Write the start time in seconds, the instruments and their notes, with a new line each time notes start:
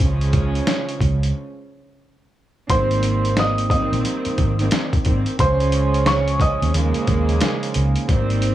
0.00 fingered electric bass C#2, string section C#3 F3 G#3 C#4, kick, closed hi-hat
0.21 closed hi-hat
0.33 kick, closed hi-hat
0.55 closed hi-hat
0.67 snare, closed hi-hat
0.89 closed hi-hat
1.01 fingered electric bass C#2, kick, closed hi-hat
1.23 closed hi-hat
2.69 fingered electric bass G#1, string section D#3 G3 A#3 C4, tonewheel organ D#3 C4 G4, upright piano C5 C6, kick, closed hi-hat
2.91 closed hi-hat
3.03 closed hi-hat
3.25 closed hi-hat
3.37 upright piano D#5 D#6, snare, closed hi-hat
3.58 closed hi-hat
3.70 string section D#3 G3 A#3 C4, upright piano D#5 D#6, kick, closed hi-hat
3.92 fingered electric bass A#1, closed hi-hat
4.05 closed hi-hat
4.25 muted fingered electric bass stroke, closed hi-hat
4.38 fingered electric bass G#1, kick, closed hi-hat
4.59 string section D#3 G3 A#3 C4, closed hi-hat
4.70 string section D#3 G3 A#3 C4, snare, closed hi-hat
4.93 kick, closed hi-hat
5.04 fingered electric bass G#1, string section D#3 G3 A#3 C4, kick, closed hi-hat
5.26 closed hi-hat
5.38 fingered electric bass C#2, string section C#3 F3 G#3 C#4, tonewheel organ F3 C#4 G#4, upright piano C5 C6, kick, closed hi-hat
5.60 closed hi-hat
5.72 closed hi-hat
5.94 closed hi-hat
6.06 upright piano C#5 C#6, snare, closed hi-hat
6.28 closed hi-hat
6.40 upright piano D#5 D#6, kick, closed hi-hat
6.62 fingered electric bass D#2, closed hi-hat
6.74 fingered electric bass D#2, string section C#3 F3 G#3 A#3, tonewheel organ D#3 A#3 C#4, closed hi-hat
6.94 muted fingered electric bass stroke, closed hi-hat
7.07 fingered electric bass D#2, kick, closed hi-hat
7.29 closed hi-hat
7.41 snare, closed hi-hat
7.63 closed hi-hat
7.74 fingered electric bass C#2, closed hi-hat
7.96 closed hi-hat
8.08 fingered electric bass G#1, string section D#3 G3 A#3 C4, tonewheel organ G3 C4 G4, kick, closed hi-hat
8.30 closed hi-hat
8.42 closed hi-hat